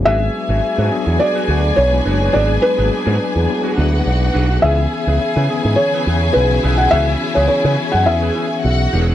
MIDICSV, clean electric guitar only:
0, 0, Header, 1, 3, 480
1, 0, Start_track
1, 0, Tempo, 572519
1, 44, Time_signature, 4, 2, 24, 8
1, 7670, End_track
2, 0, Start_track
2, 0, Title_t, "Clean electric guitar"
2, 0, Program_c, 0, 27
2, 45, Note_on_c, 0, 62, 80
2, 51, Note_on_c, 0, 66, 88
2, 59, Note_on_c, 0, 71, 82
2, 165, Note_off_c, 0, 71, 0
2, 174, Note_off_c, 0, 66, 0
2, 191, Note_off_c, 0, 62, 0
2, 412, Note_on_c, 0, 71, 61
2, 419, Note_on_c, 0, 66, 63
2, 427, Note_on_c, 0, 62, 59
2, 516, Note_off_c, 0, 71, 0
2, 517, Note_off_c, 0, 62, 0
2, 519, Note_off_c, 0, 66, 0
2, 650, Note_on_c, 0, 71, 80
2, 658, Note_on_c, 0, 66, 66
2, 664, Note_on_c, 0, 62, 60
2, 753, Note_off_c, 0, 62, 0
2, 759, Note_off_c, 0, 66, 0
2, 762, Note_off_c, 0, 71, 0
2, 1134, Note_on_c, 0, 71, 80
2, 1142, Note_on_c, 0, 66, 73
2, 1150, Note_on_c, 0, 62, 66
2, 1233, Note_off_c, 0, 62, 0
2, 1243, Note_on_c, 0, 62, 56
2, 1245, Note_off_c, 0, 66, 0
2, 1249, Note_off_c, 0, 71, 0
2, 1256, Note_on_c, 0, 66, 62
2, 1259, Note_on_c, 0, 71, 75
2, 1356, Note_off_c, 0, 71, 0
2, 1361, Note_off_c, 0, 62, 0
2, 1367, Note_off_c, 0, 66, 0
2, 1723, Note_on_c, 0, 62, 82
2, 1734, Note_on_c, 0, 66, 92
2, 1740, Note_on_c, 0, 71, 78
2, 1846, Note_off_c, 0, 71, 0
2, 1856, Note_off_c, 0, 66, 0
2, 1856, Note_on_c, 0, 71, 64
2, 1859, Note_off_c, 0, 62, 0
2, 1866, Note_on_c, 0, 66, 52
2, 1869, Note_on_c, 0, 62, 52
2, 1954, Note_off_c, 0, 62, 0
2, 1958, Note_off_c, 0, 71, 0
2, 1963, Note_off_c, 0, 66, 0
2, 1965, Note_on_c, 0, 62, 88
2, 1976, Note_on_c, 0, 66, 82
2, 1980, Note_on_c, 0, 71, 95
2, 2087, Note_off_c, 0, 71, 0
2, 2098, Note_off_c, 0, 66, 0
2, 2112, Note_off_c, 0, 62, 0
2, 2326, Note_on_c, 0, 71, 64
2, 2334, Note_on_c, 0, 66, 57
2, 2343, Note_on_c, 0, 62, 60
2, 2428, Note_off_c, 0, 62, 0
2, 2433, Note_off_c, 0, 71, 0
2, 2434, Note_off_c, 0, 66, 0
2, 2563, Note_on_c, 0, 71, 84
2, 2570, Note_on_c, 0, 66, 84
2, 2577, Note_on_c, 0, 62, 70
2, 2668, Note_off_c, 0, 62, 0
2, 2674, Note_off_c, 0, 66, 0
2, 2678, Note_off_c, 0, 71, 0
2, 3045, Note_on_c, 0, 71, 78
2, 3050, Note_on_c, 0, 66, 76
2, 3056, Note_on_c, 0, 62, 65
2, 3146, Note_off_c, 0, 62, 0
2, 3155, Note_off_c, 0, 66, 0
2, 3156, Note_on_c, 0, 62, 58
2, 3158, Note_off_c, 0, 71, 0
2, 3165, Note_on_c, 0, 66, 61
2, 3168, Note_on_c, 0, 71, 67
2, 3276, Note_off_c, 0, 71, 0
2, 3277, Note_off_c, 0, 62, 0
2, 3282, Note_off_c, 0, 66, 0
2, 3637, Note_on_c, 0, 62, 90
2, 3644, Note_on_c, 0, 66, 93
2, 3650, Note_on_c, 0, 71, 94
2, 3760, Note_off_c, 0, 71, 0
2, 3769, Note_off_c, 0, 66, 0
2, 3770, Note_on_c, 0, 71, 62
2, 3776, Note_off_c, 0, 62, 0
2, 3779, Note_on_c, 0, 66, 61
2, 3786, Note_on_c, 0, 62, 55
2, 3875, Note_off_c, 0, 71, 0
2, 3879, Note_off_c, 0, 66, 0
2, 3883, Note_off_c, 0, 62, 0
2, 3888, Note_on_c, 0, 64, 80
2, 3896, Note_on_c, 0, 68, 84
2, 3902, Note_on_c, 0, 71, 91
2, 4009, Note_off_c, 0, 71, 0
2, 4019, Note_off_c, 0, 68, 0
2, 4033, Note_off_c, 0, 64, 0
2, 4257, Note_on_c, 0, 71, 62
2, 4266, Note_on_c, 0, 68, 66
2, 4272, Note_on_c, 0, 64, 52
2, 4358, Note_off_c, 0, 71, 0
2, 4360, Note_off_c, 0, 64, 0
2, 4362, Note_off_c, 0, 68, 0
2, 4496, Note_on_c, 0, 71, 99
2, 4505, Note_on_c, 0, 68, 74
2, 4509, Note_on_c, 0, 64, 65
2, 4603, Note_off_c, 0, 64, 0
2, 4607, Note_off_c, 0, 68, 0
2, 4612, Note_off_c, 0, 71, 0
2, 4979, Note_on_c, 0, 71, 86
2, 4987, Note_on_c, 0, 68, 76
2, 4994, Note_on_c, 0, 64, 65
2, 5084, Note_off_c, 0, 64, 0
2, 5090, Note_off_c, 0, 68, 0
2, 5094, Note_on_c, 0, 64, 52
2, 5098, Note_off_c, 0, 71, 0
2, 5100, Note_on_c, 0, 68, 63
2, 5108, Note_on_c, 0, 71, 61
2, 5206, Note_off_c, 0, 64, 0
2, 5207, Note_off_c, 0, 71, 0
2, 5209, Note_off_c, 0, 68, 0
2, 5562, Note_on_c, 0, 64, 95
2, 5565, Note_on_c, 0, 68, 97
2, 5573, Note_on_c, 0, 71, 99
2, 5674, Note_off_c, 0, 71, 0
2, 5681, Note_off_c, 0, 68, 0
2, 5684, Note_on_c, 0, 71, 59
2, 5687, Note_off_c, 0, 64, 0
2, 5691, Note_on_c, 0, 68, 52
2, 5697, Note_on_c, 0, 64, 50
2, 5788, Note_off_c, 0, 64, 0
2, 5791, Note_off_c, 0, 71, 0
2, 5794, Note_off_c, 0, 68, 0
2, 5799, Note_on_c, 0, 64, 81
2, 5808, Note_on_c, 0, 68, 88
2, 5814, Note_on_c, 0, 71, 83
2, 5924, Note_off_c, 0, 71, 0
2, 5935, Note_off_c, 0, 68, 0
2, 5948, Note_off_c, 0, 64, 0
2, 6167, Note_on_c, 0, 71, 67
2, 6176, Note_on_c, 0, 68, 60
2, 6186, Note_on_c, 0, 64, 54
2, 6272, Note_off_c, 0, 71, 0
2, 6276, Note_off_c, 0, 64, 0
2, 6277, Note_off_c, 0, 68, 0
2, 6409, Note_on_c, 0, 71, 82
2, 6417, Note_on_c, 0, 68, 80
2, 6427, Note_on_c, 0, 64, 65
2, 6516, Note_off_c, 0, 64, 0
2, 6521, Note_off_c, 0, 68, 0
2, 6526, Note_off_c, 0, 71, 0
2, 6892, Note_on_c, 0, 71, 82
2, 6899, Note_on_c, 0, 68, 80
2, 6905, Note_on_c, 0, 64, 69
2, 6993, Note_off_c, 0, 64, 0
2, 7003, Note_off_c, 0, 68, 0
2, 7003, Note_on_c, 0, 64, 65
2, 7007, Note_off_c, 0, 71, 0
2, 7014, Note_on_c, 0, 68, 62
2, 7017, Note_on_c, 0, 71, 64
2, 7119, Note_off_c, 0, 64, 0
2, 7123, Note_off_c, 0, 71, 0
2, 7124, Note_off_c, 0, 68, 0
2, 7485, Note_on_c, 0, 64, 77
2, 7492, Note_on_c, 0, 68, 82
2, 7499, Note_on_c, 0, 71, 86
2, 7602, Note_off_c, 0, 71, 0
2, 7610, Note_off_c, 0, 68, 0
2, 7612, Note_on_c, 0, 71, 66
2, 7617, Note_off_c, 0, 64, 0
2, 7620, Note_on_c, 0, 68, 64
2, 7627, Note_on_c, 0, 64, 53
2, 7670, Note_off_c, 0, 64, 0
2, 7670, Note_off_c, 0, 68, 0
2, 7670, Note_off_c, 0, 71, 0
2, 7670, End_track
3, 0, Start_track
3, 0, Title_t, "Muted clean electric guitar strokes"
3, 175, Note_on_c, 9, 29, 40
3, 259, Note_off_c, 9, 29, 0
3, 288, Note_on_c, 9, 29, 41
3, 372, Note_off_c, 9, 29, 0
3, 528, Note_on_c, 9, 29, 29
3, 611, Note_off_c, 9, 29, 0
3, 763, Note_on_c, 9, 29, 43
3, 847, Note_off_c, 9, 29, 0
3, 893, Note_on_c, 9, 29, 51
3, 977, Note_off_c, 9, 29, 0
3, 1006, Note_on_c, 9, 29, 38
3, 1089, Note_off_c, 9, 29, 0
3, 1366, Note_on_c, 9, 29, 41
3, 1450, Note_off_c, 9, 29, 0
3, 1487, Note_on_c, 9, 29, 44
3, 1571, Note_off_c, 9, 29, 0
3, 1616, Note_on_c, 9, 29, 44
3, 1700, Note_off_c, 9, 29, 0
3, 2097, Note_on_c, 9, 29, 42
3, 2181, Note_off_c, 9, 29, 0
3, 2206, Note_on_c, 9, 29, 49
3, 2290, Note_off_c, 9, 29, 0
3, 2813, Note_on_c, 9, 29, 55
3, 2897, Note_off_c, 9, 29, 0
3, 2925, Note_on_c, 9, 29, 28
3, 3008, Note_off_c, 9, 29, 0
3, 3286, Note_on_c, 9, 29, 51
3, 3370, Note_off_c, 9, 29, 0
3, 3400, Note_on_c, 9, 29, 42
3, 3484, Note_off_c, 9, 29, 0
3, 3524, Note_on_c, 9, 29, 47
3, 3607, Note_off_c, 9, 29, 0
3, 4019, Note_on_c, 9, 29, 38
3, 4103, Note_off_c, 9, 29, 0
3, 4132, Note_on_c, 9, 29, 46
3, 4216, Note_off_c, 9, 29, 0
3, 4370, Note_on_c, 9, 29, 38
3, 4453, Note_off_c, 9, 29, 0
3, 4613, Note_on_c, 9, 29, 46
3, 4696, Note_off_c, 9, 29, 0
3, 4739, Note_on_c, 9, 29, 42
3, 4823, Note_off_c, 9, 29, 0
3, 4853, Note_on_c, 9, 29, 44
3, 4937, Note_off_c, 9, 29, 0
3, 5217, Note_on_c, 9, 29, 47
3, 5301, Note_off_c, 9, 29, 0
3, 5329, Note_on_c, 9, 29, 48
3, 5413, Note_off_c, 9, 29, 0
3, 5454, Note_on_c, 9, 29, 43
3, 5538, Note_off_c, 9, 29, 0
3, 5934, Note_on_c, 9, 29, 38
3, 6018, Note_off_c, 9, 29, 0
3, 6048, Note_on_c, 9, 29, 44
3, 6132, Note_off_c, 9, 29, 0
3, 6286, Note_on_c, 9, 29, 48
3, 6370, Note_off_c, 9, 29, 0
3, 6658, Note_on_c, 9, 29, 44
3, 6742, Note_off_c, 9, 29, 0
3, 6770, Note_on_c, 9, 29, 42
3, 6854, Note_off_c, 9, 29, 0
3, 7244, Note_on_c, 9, 29, 40
3, 7327, Note_off_c, 9, 29, 0
3, 7373, Note_on_c, 9, 29, 48
3, 7457, Note_off_c, 9, 29, 0
3, 7670, End_track
0, 0, End_of_file